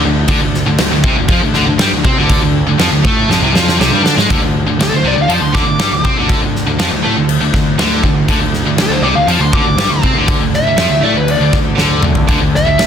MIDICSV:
0, 0, Header, 1, 6, 480
1, 0, Start_track
1, 0, Tempo, 500000
1, 281, Time_signature, 4, 2, 24, 8
1, 12352, End_track
2, 0, Start_track
2, 0, Title_t, "Lead electric guitar"
2, 0, Program_c, 0, 29
2, 4632, Note_on_c, 0, 69, 92
2, 4762, Note_off_c, 0, 69, 0
2, 4762, Note_on_c, 0, 72, 71
2, 4859, Note_off_c, 0, 72, 0
2, 4871, Note_on_c, 0, 74, 86
2, 4973, Note_off_c, 0, 74, 0
2, 5011, Note_on_c, 0, 77, 80
2, 5095, Note_on_c, 0, 81, 93
2, 5104, Note_off_c, 0, 77, 0
2, 5203, Note_on_c, 0, 84, 78
2, 5205, Note_off_c, 0, 81, 0
2, 5319, Note_off_c, 0, 84, 0
2, 5329, Note_on_c, 0, 86, 92
2, 5792, Note_off_c, 0, 86, 0
2, 8463, Note_on_c, 0, 69, 101
2, 8558, Note_on_c, 0, 72, 96
2, 8571, Note_off_c, 0, 69, 0
2, 8663, Note_off_c, 0, 72, 0
2, 8663, Note_on_c, 0, 74, 95
2, 8788, Note_on_c, 0, 77, 77
2, 8790, Note_off_c, 0, 74, 0
2, 8910, Note_on_c, 0, 81, 95
2, 8913, Note_off_c, 0, 77, 0
2, 9033, Note_off_c, 0, 81, 0
2, 9033, Note_on_c, 0, 84, 81
2, 9155, Note_off_c, 0, 84, 0
2, 9159, Note_on_c, 0, 86, 101
2, 9628, Note_off_c, 0, 86, 0
2, 10131, Note_on_c, 0, 76, 102
2, 10588, Note_on_c, 0, 74, 94
2, 10594, Note_off_c, 0, 76, 0
2, 10723, Note_off_c, 0, 74, 0
2, 10723, Note_on_c, 0, 71, 99
2, 10841, Note_off_c, 0, 71, 0
2, 10862, Note_on_c, 0, 74, 111
2, 11087, Note_off_c, 0, 74, 0
2, 12061, Note_on_c, 0, 76, 107
2, 12352, Note_off_c, 0, 76, 0
2, 12352, End_track
3, 0, Start_track
3, 0, Title_t, "Distorted electric guitar"
3, 0, Program_c, 1, 30
3, 52, Note_on_c, 1, 50, 84
3, 239, Note_off_c, 1, 50, 0
3, 288, Note_on_c, 1, 50, 114
3, 389, Note_off_c, 1, 50, 0
3, 400, Note_on_c, 1, 50, 70
3, 593, Note_off_c, 1, 50, 0
3, 640, Note_on_c, 1, 50, 67
3, 750, Note_off_c, 1, 50, 0
3, 761, Note_on_c, 1, 50, 79
3, 867, Note_off_c, 1, 50, 0
3, 879, Note_on_c, 1, 50, 72
3, 1000, Note_off_c, 1, 50, 0
3, 1006, Note_on_c, 1, 48, 106
3, 1116, Note_off_c, 1, 48, 0
3, 1138, Note_on_c, 1, 50, 90
3, 1248, Note_off_c, 1, 50, 0
3, 1252, Note_on_c, 1, 53, 118
3, 1359, Note_off_c, 1, 53, 0
3, 1376, Note_on_c, 1, 50, 77
3, 1477, Note_off_c, 1, 50, 0
3, 1489, Note_on_c, 1, 50, 109
3, 1592, Note_off_c, 1, 50, 0
3, 1603, Note_on_c, 1, 50, 71
3, 1722, Note_off_c, 1, 50, 0
3, 1731, Note_on_c, 1, 55, 99
3, 1838, Note_off_c, 1, 55, 0
3, 1859, Note_on_c, 1, 50, 79
3, 1970, Note_off_c, 1, 50, 0
3, 1970, Note_on_c, 1, 60, 127
3, 2078, Note_off_c, 1, 60, 0
3, 2092, Note_on_c, 1, 50, 112
3, 2319, Note_off_c, 1, 50, 0
3, 2330, Note_on_c, 1, 50, 76
3, 2518, Note_off_c, 1, 50, 0
3, 2581, Note_on_c, 1, 50, 66
3, 2686, Note_off_c, 1, 50, 0
3, 2689, Note_on_c, 1, 53, 127
3, 2798, Note_off_c, 1, 53, 0
3, 2817, Note_on_c, 1, 50, 71
3, 2929, Note_off_c, 1, 50, 0
3, 2942, Note_on_c, 1, 57, 110
3, 3164, Note_off_c, 1, 57, 0
3, 3173, Note_on_c, 1, 53, 117
3, 3280, Note_off_c, 1, 53, 0
3, 3290, Note_on_c, 1, 48, 103
3, 3398, Note_off_c, 1, 48, 0
3, 3412, Note_on_c, 1, 53, 105
3, 3639, Note_off_c, 1, 53, 0
3, 3649, Note_on_c, 1, 48, 95
3, 3758, Note_off_c, 1, 48, 0
3, 3784, Note_on_c, 1, 55, 92
3, 3885, Note_off_c, 1, 55, 0
3, 3900, Note_on_c, 1, 62, 125
3, 4003, Note_off_c, 1, 62, 0
3, 4009, Note_on_c, 1, 56, 115
3, 4118, Note_off_c, 1, 56, 0
3, 4131, Note_on_c, 1, 50, 119
3, 4232, Note_off_c, 1, 50, 0
3, 4244, Note_on_c, 1, 50, 71
3, 4435, Note_off_c, 1, 50, 0
3, 4493, Note_on_c, 1, 50, 68
3, 4593, Note_off_c, 1, 50, 0
3, 4605, Note_on_c, 1, 50, 87
3, 4723, Note_off_c, 1, 50, 0
3, 4735, Note_on_c, 1, 50, 74
3, 4840, Note_off_c, 1, 50, 0
3, 4844, Note_on_c, 1, 48, 109
3, 4956, Note_off_c, 1, 48, 0
3, 4964, Note_on_c, 1, 50, 81
3, 5078, Note_off_c, 1, 50, 0
3, 5082, Note_on_c, 1, 53, 107
3, 5195, Note_off_c, 1, 53, 0
3, 5208, Note_on_c, 1, 50, 69
3, 5318, Note_off_c, 1, 50, 0
3, 5329, Note_on_c, 1, 50, 102
3, 5434, Note_off_c, 1, 50, 0
3, 5446, Note_on_c, 1, 50, 73
3, 5564, Note_off_c, 1, 50, 0
3, 5564, Note_on_c, 1, 55, 95
3, 5676, Note_off_c, 1, 55, 0
3, 5691, Note_on_c, 1, 50, 71
3, 5807, Note_off_c, 1, 50, 0
3, 5810, Note_on_c, 1, 60, 104
3, 5919, Note_off_c, 1, 60, 0
3, 5924, Note_on_c, 1, 50, 116
3, 6156, Note_off_c, 1, 50, 0
3, 6171, Note_on_c, 1, 50, 64
3, 6359, Note_off_c, 1, 50, 0
3, 6408, Note_on_c, 1, 50, 67
3, 6518, Note_off_c, 1, 50, 0
3, 6521, Note_on_c, 1, 53, 119
3, 6635, Note_off_c, 1, 53, 0
3, 6644, Note_on_c, 1, 50, 66
3, 6764, Note_off_c, 1, 50, 0
3, 6767, Note_on_c, 1, 57, 91
3, 6878, Note_off_c, 1, 57, 0
3, 6880, Note_on_c, 1, 50, 88
3, 7074, Note_off_c, 1, 50, 0
3, 7124, Note_on_c, 1, 50, 75
3, 7235, Note_off_c, 1, 50, 0
3, 7247, Note_on_c, 1, 50, 75
3, 7438, Note_off_c, 1, 50, 0
3, 7477, Note_on_c, 1, 50, 93
3, 7714, Note_off_c, 1, 50, 0
3, 7724, Note_on_c, 1, 50, 77
3, 7916, Note_off_c, 1, 50, 0
3, 7961, Note_on_c, 1, 50, 118
3, 8068, Note_off_c, 1, 50, 0
3, 8079, Note_on_c, 1, 50, 82
3, 8274, Note_off_c, 1, 50, 0
3, 8325, Note_on_c, 1, 50, 69
3, 8429, Note_off_c, 1, 50, 0
3, 8440, Note_on_c, 1, 50, 82
3, 8550, Note_off_c, 1, 50, 0
3, 8561, Note_on_c, 1, 50, 72
3, 8676, Note_off_c, 1, 50, 0
3, 8679, Note_on_c, 1, 48, 104
3, 8796, Note_off_c, 1, 48, 0
3, 8807, Note_on_c, 1, 50, 89
3, 8922, Note_off_c, 1, 50, 0
3, 8926, Note_on_c, 1, 53, 112
3, 9039, Note_off_c, 1, 53, 0
3, 9045, Note_on_c, 1, 50, 77
3, 9154, Note_off_c, 1, 50, 0
3, 9166, Note_on_c, 1, 50, 104
3, 9275, Note_off_c, 1, 50, 0
3, 9287, Note_on_c, 1, 50, 65
3, 9406, Note_off_c, 1, 50, 0
3, 9407, Note_on_c, 1, 55, 106
3, 9520, Note_off_c, 1, 55, 0
3, 9522, Note_on_c, 1, 50, 80
3, 9640, Note_on_c, 1, 60, 117
3, 9644, Note_off_c, 1, 50, 0
3, 9756, Note_off_c, 1, 60, 0
3, 9766, Note_on_c, 1, 50, 111
3, 9999, Note_off_c, 1, 50, 0
3, 10008, Note_on_c, 1, 50, 64
3, 10199, Note_off_c, 1, 50, 0
3, 10260, Note_on_c, 1, 50, 71
3, 10363, Note_off_c, 1, 50, 0
3, 10367, Note_on_c, 1, 53, 111
3, 10479, Note_off_c, 1, 53, 0
3, 10492, Note_on_c, 1, 50, 68
3, 10609, Note_off_c, 1, 50, 0
3, 10609, Note_on_c, 1, 57, 108
3, 10721, Note_off_c, 1, 57, 0
3, 10727, Note_on_c, 1, 50, 87
3, 10918, Note_off_c, 1, 50, 0
3, 10972, Note_on_c, 1, 50, 76
3, 11072, Note_off_c, 1, 50, 0
3, 11083, Note_on_c, 1, 50, 81
3, 11277, Note_off_c, 1, 50, 0
3, 11323, Note_on_c, 1, 50, 95
3, 11552, Note_off_c, 1, 50, 0
3, 11564, Note_on_c, 1, 50, 81
3, 11757, Note_off_c, 1, 50, 0
3, 11799, Note_on_c, 1, 50, 113
3, 11904, Note_off_c, 1, 50, 0
3, 11916, Note_on_c, 1, 50, 73
3, 12113, Note_off_c, 1, 50, 0
3, 12159, Note_on_c, 1, 50, 77
3, 12261, Note_off_c, 1, 50, 0
3, 12273, Note_on_c, 1, 50, 85
3, 12352, Note_off_c, 1, 50, 0
3, 12352, End_track
4, 0, Start_track
4, 0, Title_t, "Distorted electric guitar"
4, 0, Program_c, 2, 30
4, 10216, Note_on_c, 2, 50, 79
4, 10330, Note_off_c, 2, 50, 0
4, 11282, Note_on_c, 2, 50, 113
4, 11523, Note_off_c, 2, 50, 0
4, 12352, End_track
5, 0, Start_track
5, 0, Title_t, "Picked electric bass"
5, 0, Program_c, 3, 34
5, 46, Note_on_c, 3, 38, 81
5, 267, Note_off_c, 3, 38, 0
5, 272, Note_on_c, 3, 38, 104
5, 388, Note_off_c, 3, 38, 0
5, 397, Note_on_c, 3, 38, 94
5, 622, Note_off_c, 3, 38, 0
5, 641, Note_on_c, 3, 38, 78
5, 753, Note_off_c, 3, 38, 0
5, 757, Note_on_c, 3, 38, 87
5, 871, Note_off_c, 3, 38, 0
5, 888, Note_on_c, 3, 38, 85
5, 990, Note_off_c, 3, 38, 0
5, 995, Note_on_c, 3, 36, 97
5, 1110, Note_off_c, 3, 36, 0
5, 1118, Note_on_c, 3, 38, 68
5, 1231, Note_off_c, 3, 38, 0
5, 1238, Note_on_c, 3, 41, 106
5, 1351, Note_off_c, 3, 41, 0
5, 1374, Note_on_c, 3, 38, 91
5, 1479, Note_off_c, 3, 38, 0
5, 1487, Note_on_c, 3, 38, 102
5, 1596, Note_off_c, 3, 38, 0
5, 1607, Note_on_c, 3, 38, 85
5, 1716, Note_off_c, 3, 38, 0
5, 1721, Note_on_c, 3, 43, 111
5, 1832, Note_off_c, 3, 43, 0
5, 1850, Note_on_c, 3, 38, 77
5, 1957, Note_off_c, 3, 38, 0
5, 1966, Note_on_c, 3, 48, 98
5, 2075, Note_off_c, 3, 48, 0
5, 2090, Note_on_c, 3, 38, 84
5, 2309, Note_off_c, 3, 38, 0
5, 2324, Note_on_c, 3, 38, 94
5, 2545, Note_off_c, 3, 38, 0
5, 2568, Note_on_c, 3, 38, 82
5, 2676, Note_off_c, 3, 38, 0
5, 2681, Note_on_c, 3, 41, 107
5, 2793, Note_off_c, 3, 41, 0
5, 2799, Note_on_c, 3, 38, 75
5, 2911, Note_off_c, 3, 38, 0
5, 2921, Note_on_c, 3, 45, 86
5, 3144, Note_off_c, 3, 45, 0
5, 3163, Note_on_c, 3, 41, 106
5, 3274, Note_off_c, 3, 41, 0
5, 3284, Note_on_c, 3, 36, 102
5, 3394, Note_off_c, 3, 36, 0
5, 3400, Note_on_c, 3, 41, 104
5, 3624, Note_off_c, 3, 41, 0
5, 3644, Note_on_c, 3, 36, 97
5, 3749, Note_off_c, 3, 36, 0
5, 3755, Note_on_c, 3, 43, 105
5, 3869, Note_off_c, 3, 43, 0
5, 3876, Note_on_c, 3, 50, 88
5, 3990, Note_off_c, 3, 50, 0
5, 4004, Note_on_c, 3, 44, 86
5, 4114, Note_off_c, 3, 44, 0
5, 4126, Note_on_c, 3, 38, 96
5, 4226, Note_off_c, 3, 38, 0
5, 4232, Note_on_c, 3, 38, 88
5, 4460, Note_off_c, 3, 38, 0
5, 4473, Note_on_c, 3, 38, 81
5, 4589, Note_off_c, 3, 38, 0
5, 4594, Note_on_c, 3, 38, 84
5, 4709, Note_off_c, 3, 38, 0
5, 4716, Note_on_c, 3, 38, 84
5, 4827, Note_off_c, 3, 38, 0
5, 4832, Note_on_c, 3, 36, 86
5, 4941, Note_off_c, 3, 36, 0
5, 4947, Note_on_c, 3, 38, 77
5, 5066, Note_off_c, 3, 38, 0
5, 5070, Note_on_c, 3, 41, 102
5, 5187, Note_off_c, 3, 41, 0
5, 5192, Note_on_c, 3, 38, 79
5, 5308, Note_off_c, 3, 38, 0
5, 5324, Note_on_c, 3, 38, 104
5, 5435, Note_off_c, 3, 38, 0
5, 5446, Note_on_c, 3, 38, 77
5, 5554, Note_off_c, 3, 38, 0
5, 5560, Note_on_c, 3, 43, 102
5, 5673, Note_off_c, 3, 43, 0
5, 5681, Note_on_c, 3, 38, 83
5, 5793, Note_off_c, 3, 38, 0
5, 5808, Note_on_c, 3, 48, 90
5, 5917, Note_off_c, 3, 48, 0
5, 5938, Note_on_c, 3, 38, 81
5, 6154, Note_off_c, 3, 38, 0
5, 6166, Note_on_c, 3, 38, 90
5, 6388, Note_off_c, 3, 38, 0
5, 6398, Note_on_c, 3, 38, 82
5, 6512, Note_off_c, 3, 38, 0
5, 6528, Note_on_c, 3, 41, 90
5, 6638, Note_off_c, 3, 41, 0
5, 6645, Note_on_c, 3, 38, 82
5, 6756, Note_off_c, 3, 38, 0
5, 6773, Note_on_c, 3, 45, 97
5, 6877, Note_off_c, 3, 45, 0
5, 6883, Note_on_c, 3, 38, 73
5, 7107, Note_off_c, 3, 38, 0
5, 7121, Note_on_c, 3, 38, 79
5, 7225, Note_off_c, 3, 38, 0
5, 7231, Note_on_c, 3, 38, 81
5, 7461, Note_off_c, 3, 38, 0
5, 7474, Note_on_c, 3, 38, 100
5, 7703, Note_off_c, 3, 38, 0
5, 7717, Note_on_c, 3, 38, 78
5, 7944, Note_off_c, 3, 38, 0
5, 7951, Note_on_c, 3, 38, 109
5, 8060, Note_off_c, 3, 38, 0
5, 8066, Note_on_c, 3, 38, 101
5, 8289, Note_off_c, 3, 38, 0
5, 8294, Note_on_c, 3, 38, 75
5, 8411, Note_off_c, 3, 38, 0
5, 8417, Note_on_c, 3, 38, 80
5, 8533, Note_off_c, 3, 38, 0
5, 8539, Note_on_c, 3, 38, 88
5, 8653, Note_off_c, 3, 38, 0
5, 8659, Note_on_c, 3, 36, 89
5, 8767, Note_off_c, 3, 36, 0
5, 8773, Note_on_c, 3, 38, 77
5, 8889, Note_off_c, 3, 38, 0
5, 8894, Note_on_c, 3, 41, 106
5, 9012, Note_off_c, 3, 41, 0
5, 9017, Note_on_c, 3, 38, 89
5, 9142, Note_off_c, 3, 38, 0
5, 9153, Note_on_c, 3, 38, 116
5, 9240, Note_off_c, 3, 38, 0
5, 9246, Note_on_c, 3, 38, 72
5, 9362, Note_off_c, 3, 38, 0
5, 9368, Note_on_c, 3, 43, 97
5, 9486, Note_off_c, 3, 43, 0
5, 9491, Note_on_c, 3, 38, 82
5, 9619, Note_off_c, 3, 38, 0
5, 9637, Note_on_c, 3, 48, 86
5, 9722, Note_off_c, 3, 48, 0
5, 9728, Note_on_c, 3, 38, 75
5, 9969, Note_off_c, 3, 38, 0
5, 9976, Note_on_c, 3, 38, 92
5, 10198, Note_off_c, 3, 38, 0
5, 10204, Note_on_c, 3, 38, 75
5, 10331, Note_off_c, 3, 38, 0
5, 10337, Note_on_c, 3, 41, 90
5, 10450, Note_off_c, 3, 41, 0
5, 10456, Note_on_c, 3, 38, 88
5, 10566, Note_off_c, 3, 38, 0
5, 10571, Note_on_c, 3, 45, 88
5, 10688, Note_off_c, 3, 45, 0
5, 10694, Note_on_c, 3, 38, 81
5, 10918, Note_off_c, 3, 38, 0
5, 10924, Note_on_c, 3, 38, 83
5, 11055, Note_off_c, 3, 38, 0
5, 11063, Note_on_c, 3, 38, 89
5, 11297, Note_off_c, 3, 38, 0
5, 11306, Note_on_c, 3, 38, 94
5, 11539, Note_off_c, 3, 38, 0
5, 11544, Note_on_c, 3, 38, 77
5, 11777, Note_off_c, 3, 38, 0
5, 11797, Note_on_c, 3, 38, 109
5, 11913, Note_off_c, 3, 38, 0
5, 11921, Note_on_c, 3, 38, 95
5, 12146, Note_off_c, 3, 38, 0
5, 12164, Note_on_c, 3, 38, 82
5, 12276, Note_off_c, 3, 38, 0
5, 12285, Note_on_c, 3, 38, 86
5, 12352, Note_off_c, 3, 38, 0
5, 12352, End_track
6, 0, Start_track
6, 0, Title_t, "Drums"
6, 266, Note_on_c, 9, 49, 59
6, 274, Note_on_c, 9, 36, 99
6, 362, Note_off_c, 9, 49, 0
6, 370, Note_off_c, 9, 36, 0
6, 519, Note_on_c, 9, 38, 34
6, 615, Note_off_c, 9, 38, 0
6, 751, Note_on_c, 9, 49, 57
6, 755, Note_on_c, 9, 38, 101
6, 847, Note_off_c, 9, 49, 0
6, 851, Note_off_c, 9, 38, 0
6, 996, Note_on_c, 9, 36, 104
6, 1092, Note_off_c, 9, 36, 0
6, 1232, Note_on_c, 9, 49, 62
6, 1236, Note_on_c, 9, 36, 117
6, 1328, Note_off_c, 9, 49, 0
6, 1332, Note_off_c, 9, 36, 0
6, 1475, Note_on_c, 9, 38, 36
6, 1571, Note_off_c, 9, 38, 0
6, 1717, Note_on_c, 9, 49, 55
6, 1721, Note_on_c, 9, 38, 105
6, 1813, Note_off_c, 9, 49, 0
6, 1817, Note_off_c, 9, 38, 0
6, 1964, Note_on_c, 9, 36, 100
6, 2060, Note_off_c, 9, 36, 0
6, 2204, Note_on_c, 9, 36, 100
6, 2204, Note_on_c, 9, 49, 55
6, 2300, Note_off_c, 9, 36, 0
6, 2300, Note_off_c, 9, 49, 0
6, 2680, Note_on_c, 9, 49, 61
6, 2684, Note_on_c, 9, 38, 95
6, 2776, Note_off_c, 9, 49, 0
6, 2780, Note_off_c, 9, 38, 0
6, 2925, Note_on_c, 9, 36, 106
6, 3021, Note_off_c, 9, 36, 0
6, 3177, Note_on_c, 9, 38, 68
6, 3273, Note_off_c, 9, 38, 0
6, 3413, Note_on_c, 9, 38, 88
6, 3509, Note_off_c, 9, 38, 0
6, 3537, Note_on_c, 9, 38, 80
6, 3633, Note_off_c, 9, 38, 0
6, 3659, Note_on_c, 9, 38, 95
6, 3755, Note_off_c, 9, 38, 0
6, 3895, Note_on_c, 9, 38, 96
6, 3991, Note_off_c, 9, 38, 0
6, 4016, Note_on_c, 9, 38, 95
6, 4112, Note_off_c, 9, 38, 0
6, 4132, Note_on_c, 9, 36, 105
6, 4140, Note_on_c, 9, 49, 62
6, 4228, Note_off_c, 9, 36, 0
6, 4236, Note_off_c, 9, 49, 0
6, 4612, Note_on_c, 9, 49, 55
6, 4615, Note_on_c, 9, 38, 103
6, 4708, Note_off_c, 9, 49, 0
6, 4711, Note_off_c, 9, 38, 0
6, 5083, Note_on_c, 9, 49, 59
6, 5179, Note_off_c, 9, 49, 0
6, 5325, Note_on_c, 9, 36, 81
6, 5331, Note_on_c, 9, 38, 32
6, 5421, Note_off_c, 9, 36, 0
6, 5427, Note_off_c, 9, 38, 0
6, 5561, Note_on_c, 9, 49, 53
6, 5565, Note_on_c, 9, 38, 104
6, 5657, Note_off_c, 9, 49, 0
6, 5661, Note_off_c, 9, 38, 0
6, 5806, Note_on_c, 9, 36, 82
6, 5902, Note_off_c, 9, 36, 0
6, 6042, Note_on_c, 9, 36, 97
6, 6043, Note_on_c, 9, 49, 54
6, 6138, Note_off_c, 9, 36, 0
6, 6139, Note_off_c, 9, 49, 0
6, 6293, Note_on_c, 9, 38, 33
6, 6389, Note_off_c, 9, 38, 0
6, 6521, Note_on_c, 9, 49, 58
6, 6525, Note_on_c, 9, 38, 113
6, 6617, Note_off_c, 9, 49, 0
6, 6621, Note_off_c, 9, 38, 0
6, 6996, Note_on_c, 9, 49, 61
6, 7092, Note_off_c, 9, 49, 0
6, 7236, Note_on_c, 9, 36, 81
6, 7243, Note_on_c, 9, 38, 35
6, 7332, Note_off_c, 9, 36, 0
6, 7339, Note_off_c, 9, 38, 0
6, 7477, Note_on_c, 9, 49, 59
6, 7481, Note_on_c, 9, 38, 113
6, 7573, Note_off_c, 9, 49, 0
6, 7577, Note_off_c, 9, 38, 0
6, 7713, Note_on_c, 9, 36, 79
6, 7809, Note_off_c, 9, 36, 0
6, 7953, Note_on_c, 9, 36, 95
6, 7954, Note_on_c, 9, 49, 64
6, 8049, Note_off_c, 9, 36, 0
6, 8050, Note_off_c, 9, 49, 0
6, 8192, Note_on_c, 9, 38, 34
6, 8288, Note_off_c, 9, 38, 0
6, 8429, Note_on_c, 9, 49, 58
6, 8433, Note_on_c, 9, 38, 109
6, 8525, Note_off_c, 9, 49, 0
6, 8529, Note_off_c, 9, 38, 0
6, 8911, Note_on_c, 9, 49, 57
6, 9007, Note_off_c, 9, 49, 0
6, 9151, Note_on_c, 9, 36, 98
6, 9247, Note_off_c, 9, 36, 0
6, 9390, Note_on_c, 9, 49, 60
6, 9394, Note_on_c, 9, 38, 126
6, 9486, Note_off_c, 9, 49, 0
6, 9490, Note_off_c, 9, 38, 0
6, 9633, Note_on_c, 9, 36, 84
6, 9729, Note_off_c, 9, 36, 0
6, 9867, Note_on_c, 9, 49, 56
6, 9871, Note_on_c, 9, 36, 112
6, 9963, Note_off_c, 9, 49, 0
6, 9967, Note_off_c, 9, 36, 0
6, 10112, Note_on_c, 9, 38, 33
6, 10208, Note_off_c, 9, 38, 0
6, 10345, Note_on_c, 9, 49, 52
6, 10348, Note_on_c, 9, 38, 111
6, 10441, Note_off_c, 9, 49, 0
6, 10444, Note_off_c, 9, 38, 0
6, 10828, Note_on_c, 9, 49, 57
6, 10924, Note_off_c, 9, 49, 0
6, 11070, Note_on_c, 9, 36, 94
6, 11070, Note_on_c, 9, 38, 38
6, 11166, Note_off_c, 9, 36, 0
6, 11166, Note_off_c, 9, 38, 0
6, 11310, Note_on_c, 9, 38, 67
6, 11406, Note_off_c, 9, 38, 0
6, 11544, Note_on_c, 9, 45, 87
6, 11640, Note_off_c, 9, 45, 0
6, 11666, Note_on_c, 9, 43, 93
6, 11762, Note_off_c, 9, 43, 0
6, 11793, Note_on_c, 9, 49, 60
6, 11795, Note_on_c, 9, 36, 106
6, 11889, Note_off_c, 9, 49, 0
6, 11891, Note_off_c, 9, 36, 0
6, 12047, Note_on_c, 9, 38, 35
6, 12143, Note_off_c, 9, 38, 0
6, 12277, Note_on_c, 9, 49, 55
6, 12281, Note_on_c, 9, 38, 97
6, 12352, Note_off_c, 9, 38, 0
6, 12352, Note_off_c, 9, 49, 0
6, 12352, End_track
0, 0, End_of_file